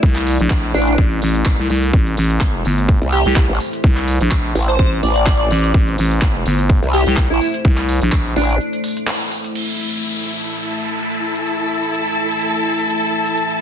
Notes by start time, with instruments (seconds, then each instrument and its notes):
Already playing: ambient pad A3 E4 D5
0.03 fm bass C2, kick, cabasa
0.16 clap, closed hi-hat, cabasa
0.27 open hi-hat
0.40 fm bass A#1, closed hi-hat, cabasa
0.50 kick, clap, cabasa
0.63 closed hi-hat, cabasa
0.74 wobble bass A1, digital synth lead D4, open hi-hat
0.87 digital synth lead D4, closed hi-hat, cabasa
0.98 fm bass A1, kick, cabasa
1.11 closed hi-hat, cabasa
1.22 fm bass A1, open hi-hat
1.35 closed hi-hat, cabasa
1.45 kick, clap, cabasa
1.59 fm bass C2, closed hi-hat, cabasa
1.70 fm bass C2, open hi-hat
1.83 closed hi-hat, cabasa
1.93 fm bass A1, ambient pad C5, kick, cabasa
2.06 closed hi-hat, cabasa
2.17 fm bass A1, open hi-hat
2.30 closed hi-hat, cabasa
2.41 kick, clap, cabasa
2.54 closed hi-hat, cabasa
2.65 fm bass G1, open hi-hat
2.78 closed hi-hat, cabasa
2.89 kick, cabasa
3.02 wobble bass C2, closed hi-hat, cabasa
3.12 digital synth lead G4, open hi-hat
3.25 fm bass C2, digital synth lead G4, closed hi-hat, cabasa
3.36 kick, clap, cabasa
3.49 wobble bass A1, closed hi-hat, cabasa
3.60 open hi-hat
3.73 closed hi-hat, cabasa
3.84 fm bass C2, kick, cabasa
3.97 clap, closed hi-hat, cabasa
4.08 open hi-hat
4.21 fm bass A#1, closed hi-hat, cabasa
4.31 kick, clap, cabasa
4.45 closed hi-hat, cabasa
4.55 wobble bass A1, open hi-hat
4.68 digital synth lead C5, closed hi-hat, cabasa
4.79 fm bass A1, digital synth lead C5, kick, cabasa
4.92 closed hi-hat, cabasa
5.03 wobble bass A1, digital synth lead D5, open hi-hat
5.16 closed hi-hat, cabasa
5.27 kick, clap, cabasa
5.40 closed hi-hat, cabasa
5.50 fm bass A1, open hi-hat
5.64 closed hi-hat, cabasa
5.74 fm bass A1, kick, cabasa
5.87 closed hi-hat, cabasa
5.98 fm bass A1, open hi-hat
6.11 closed hi-hat, cabasa
6.22 kick, clap, cabasa
6.35 closed hi-hat, cabasa
6.46 fm bass G1, open hi-hat
6.59 closed hi-hat, cabasa
6.70 kick, cabasa
6.83 wobble bass C2, closed hi-hat, cabasa
6.93 digital synth lead G4, open hi-hat
7.06 fm bass C2, digital synth lead G4, closed hi-hat, cabasa
7.17 kick, clap, cabasa
7.30 wobble bass A1, digital synth lead E4, closed hi-hat, cabasa
7.41 open hi-hat
7.54 closed hi-hat, cabasa
7.65 fm bass C2, kick, cabasa
7.77 clap, closed hi-hat, cabasa
7.89 open hi-hat
8.02 fm bass A#1, closed hi-hat, cabasa
8.12 kick, clap, cabasa
8.25 closed hi-hat, cabasa
8.36 wobble bass A1, digital synth lead D4, open hi-hat
8.49 digital synth lead D4, closed hi-hat, cabasa
8.61 cabasa
8.73 closed hi-hat, cabasa
8.84 open hi-hat
8.97 closed hi-hat, cabasa
9.07 clap, cabasa
9.21 closed hi-hat, cabasa
9.31 open hi-hat
9.44 closed hi-hat, cabasa
9.55 ambient pad A3 E4 E5, string section E4, crash, downlifter, cabasa
9.69 cabasa
9.93 cabasa
10.03 cabasa
10.13 string section A4, cabasa
10.40 cabasa
10.51 cabasa
10.64 string section A5, cabasa
10.88 cabasa
10.99 cabasa
11.12 cabasa
11.36 cabasa
11.46 cabasa
11.59 cabasa
11.83 cabasa
11.94 cabasa
12.07 cabasa
12.31 cabasa
12.42 cabasa
12.55 cabasa
12.78 cabasa
12.89 cabasa
13.02 cabasa
13.26 cabasa
13.36 riser, cabasa
13.50 cabasa